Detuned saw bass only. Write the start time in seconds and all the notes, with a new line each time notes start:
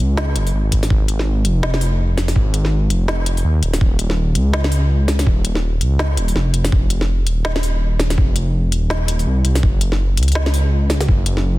0.00 C#2
0.36 F#1
0.54 G#1
0.90 G#1
1.45 F1
2.36 G#1
2.90 F1
3.45 D#2
3.63 D#1
3.81 D#1
4.36 C#2
5.27 D#1
5.81 C#2
6.18 D#1
6.36 F1
6.72 F1
7.27 D#1
8.18 F1
8.72 D#1
9.27 C2
9.45 C2
9.63 F#1
10.18 C#2
11.09 F#1